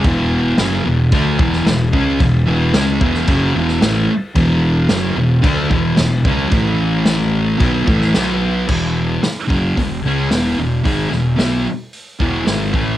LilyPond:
<<
  \new Staff \with { instrumentName = "Distorted electric guitar" } { \clef bass \time 4/4 \key e \major \tempo 4 = 111 <e, b, e>4 <fis, cis fis>8 <e, b,>8 <d a d'>8 <e, b, e>8 <e, b,>8 <cis gis cis'>8 | <e, b,>8 <e, b, e>8 <cis gis cis'>8 <e, b, e>8 <fis, cis fis>8 <e, b, e>8 <a, e a>8 r8 | <e, b, e>4 <fis, cis fis>8 <e, b,>8 <d a d'>8 <e, b, e>8 <e, b,>8 <cis gis cis'>8 | <a, e a>2 <b, fis b>8 <a, e a>8 <b, fis b>4 |
<e, b, e>4 r8 <fis, cis fis>8 <e, b,>8 <cis gis cis'>8 <e, b, e>8 <e, b,>8 | <gis, dis gis>8 <e, b,>8 <b, fis b>8 r4 <e, b, e>8 <gis, dis gis>8 <a, e a>8 | }
  \new Staff \with { instrumentName = "Fingered electric bass" } { \clef bass \time 4/4 \key e \major e,,4 fis,,8 e,,8 d,8 e,,8 e,,8 cis,8 | e,,8 e,,8 cis,8 e,,8 fis,,8 e,,8 a,,8 r8 | e,,4 fis,,8 e,,8 d,8 e,,8 e,,8 cis,8 | a,,2 b,,8 a,,8 b,,4 |
e,,4 r8 fis,,8 e,,8 cis,8 e,,8 e,,8 | gis,,8 e,,8 b,,8 r4 e,,8 gis,,8 a,,8 | }
  \new DrumStaff \with { instrumentName = "Drums" } \drummode { \time 4/4 <cymc bd>4 <cymc sn>4 <cymc bd>8 bd16 sn16 <cymc sn>8 bd8 | <cymc bd>4 <cymc sn>8 bd16 sn16 <cymc bd>8. sn16 <cymc sn>4 | <cymc bd>4 <cymc sn>4 <cymc bd>8 bd8 <cymc sn>8 bd8 | <cymc bd>4 <cymc sn>4 <cymc bd>8 bd16 sn16 <cymc sn>4 |
<cymc bd>4 <hho sn>8 bd8 <hho bd>4 <hho sn>4 | <hho bd>8 sn8 <hho sn>4 hho8 bd8 <hho sn>8 bd8 | }
>>